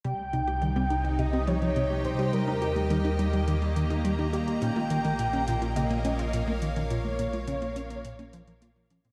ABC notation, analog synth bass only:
X:1
M:4/4
L:1/16
Q:1/4=105
K:Bbdor
V:1 name="Analog synth bass" clef=bass
C, z C, G E, C E z C, C F, F, C, z C, G | G, E G z E, E G, G, E, z E, B, G, E G z | B,, B, E, E, B,, z B,, F D, B, D z B,, B, E, E, | B,, z B,, F D, B, D z B,, B, F, F, B, z F, B,, |]